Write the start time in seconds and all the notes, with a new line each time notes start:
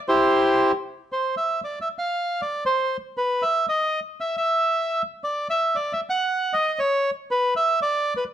0.08 E4 G4 C5
1.12 C5
1.37 E5
1.64 D5
1.81 E5
1.98 F5
2.42 D5
2.66 C5
3.17 B4
3.42 E5
3.69 D#5
4.20 E5
4.37 E5
5.24 D5
5.50 E5
5.75 D5
5.93 E5
6.10 F#5
6.53 D#5
6.79 C#5
7.31 B4
7.56 E5
7.82 D5
8.17 B4